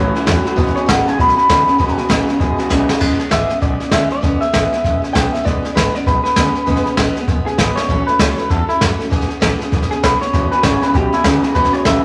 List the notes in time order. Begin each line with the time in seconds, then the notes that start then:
Already playing: A1 A2 E3 F#3 A3 C#4 C#5
0.00 F#4
0.14 A2 E3 F#3 A3 C#4 F#4, snare
0.26 E2 A2 E3 F#3 A3 C#4 F#4, kick, snare, hi-hat pedal
0.45 A2 F#3 A3 C#4 F#4, muted upright bass stroke, snare
0.56 E1 E2 B2 E3 G#3 B3 C#4 G#4, kick, snare
0.67 snare
0.75 E2 B2 B3 C#4 G#4 C#5, muted upright bass stroke, snare
0.86 G#1 E2 C#3 E3 G#3 B3 C#4 G#4 F#5, kick, snare, hi-hat pedal
1.05 E2 C#3 B3 C#4 G#4 G#5, muted upright bass stroke, snare
1.17 B1 E2 B2 G#3 B3 C#4 G#4 B5, kick, snare
1.29 snare
1.36 E2 B2 B3 C#4 G#4 B5, muted upright bass stroke, snare
1.49 D2 E2 C#3 E3 G#3 B3 C#4 G#4, kick, snare, hi-hat pedal
1.67 E2 C#3 B3 C#4 G#4, muted upright bass stroke, snare
1.78 E1 E2 B2 E3 G#3 B3 C#4 G#4, kick, snare
1.88 snare
1.97 E2 B2 B3 C#4 G#4, muted upright bass stroke, snare
2.09 A1 E2 C#3 E3 G#3 B3 C#4 G#4, kick, snare, hi-hat pedal
2.26 E2 C#3 B3 C#4 G#4, muted upright bass stroke, snare
2.39 E1 E2 B2 G#3 B3 C#4 G#4, kick, snare
2.57 E2 B2 B3 C#4 G#4, muted upright bass stroke, snare
2.69 B1 E2 C#3 E3 G#3 B3 C#4 G#4, kick, snare, hi-hat pedal
2.88 E2 C#3 B3 C#4 G#4, muted upright bass stroke, snare
3.00 E1 E3 G#3 B3 C#4 G#4, kick, snare, crash
3.18 B3 C#4 G#4, snare
3.30 G#1 E3 G#3 B3 C#4 G#4 E5, kick, snare, hi-hat pedal
3.48 B3 C#4 G#4, muted upright bass stroke, snare
3.60 B1 G#3 B3 C#4 G#4 D5, kick, snare
3.80 B3 C#4 G#4, muted upright bass stroke, snare
3.91 D2 E3 G#3 B3 C#4 G#4 E5, kick, snare, hi-hat pedal
4.10 B3 C#4 G#4 D5, muted upright bass stroke, snare
4.21 E1 E3 G#3 B3 C#4 G#4, kick, snare
4.40 B3 C#4 G#4 E5, snare
4.53 A1 E3 G#3 B3 C#4 G#4, kick, snare, hi-hat pedal
4.72 B3 C#4 G#4, snare
4.84 E1 G#3 B3 C#4 G#4, kick, snare
5.02 B3 C#4 G#4, muted upright bass stroke, snare
5.13 B1 E3 G#3 B3 C#4 G#4 G5, kick, snare, hi-hat pedal
5.33 B3 C#4 G#4 E5, snare
5.43 E1 E3 G#3 B3 C#4 G#4 D5, kick, snare
5.62 B3 C#4 G#4, muted upright bass stroke, snare
5.75 G#1 E3 G#3 B3 C#4 G#4 B4, kick, snare, hi-hat pedal
5.92 B3 C#4 G#4 D5, snare
6.05 B1 G#3 B3 C#4 G#4 B4, kick, snare
6.24 B3 C#4 G#4 B4, snare
6.36 D2 E3 G#3 B3 C#4 G#4, kick, snare, hi-hat pedal
6.55 B3 C#4 G#4, muted upright bass stroke, snare
6.66 E1 E3 G#3 B3 C#4 G#4, kick, snare
6.76 snare
6.85 C#4 G#4, muted upright bass stroke, snare
6.89 B3
6.97 A1 E3 G#3 B3 C#4 G#4, kick, snare, hi-hat pedal
7.16 C#4 G#4, snare
7.21 B3
7.28 E1 G#3 B3 C#4 G#4, kick, snare
7.46 B3 C#4 G#4, muted upright bass stroke, snare
7.58 G#1 E3 G#3 B3 C#4 G#4 B4, kick, snare, hi-hat pedal
7.76 C#4 G#4 C#5, muted upright bass stroke, snare
7.80 B3
7.89 A1 A2 E3 F#3 A3 C#4 A4, kick, snare
8.07 A3 C#4 A4 B4, snare
8.11 F#3
8.19 C#2 A2 E3 F#3 A3 C#4 A4 C#5, kick, snare, hi-hat pedal
8.37 F#3 A3 C#4 A4 B4, snare
8.49 E2 F#3 A3 C#4 A4, kick, snare
8.68 F#3 A3 C#4 E4 A4, muted upright bass stroke, snare
8.81 F#2 A2 E3 F#3 A3 C#4 A4, kick, snare, hi-hat pedal
8.99 F#3 A3 C#4 A4, muted upright bass stroke, snare
9.10 E1 E3 B3 C#4 G#4, kick, snare
9.21 snare
9.29 B3 C#4 G#4, muted upright bass stroke, snare
9.40 A1 E3 B3 C#4 G#4, kick, snare, hi-hat pedal
9.59 B3 C#4 G#4, muted upright bass stroke, snare
9.71 E1 E3 B3 C#4 G#4, kick, snare
9.82 snare
9.89 B3 C#4 G#4, muted upright bass stroke, snare
10.03 B1 E3 B3 C#4 G#4 B4, kick, snare, hi-hat pedal
10.21 B3 C#4 G#4 C#5, muted upright bass stroke, snare
10.33 E1 E2 B2 E3 B3 C#4 G#4, kick, snare
10.52 E2 B2 B3 C#4 G#4 B4, muted upright bass stroke, snare
10.63 G#1 E2 C#3 E3 B3 C#4 G#4 C#5, kick, snare, hi-hat pedal
10.82 E2 C#3 B3 C#4 G#4 B4, muted upright bass stroke, snare
10.93 B1 E2 B2 E3 B3 C#4 G4 G#4, kick, snare
11.12 E2 B2 B3 C#4 E4 G#4, snare
11.24 D2 E2 C#3 E3 B3 C#4 G#4, kick, snare, hi-hat pedal
11.42 E2 C#3 B3 C#4 G#4, muted upright bass stroke, snare
11.55 E1 E2 B2 E3 B3 C#4 G#4 B4, kick, snare
11.64 snare
11.73 E2 B2 B3 C#4 G#4 C#5, snare
11.85 A1 E2 C#3 E3 B3 C#4 G#4 E5, kick, snare, hi-hat pedal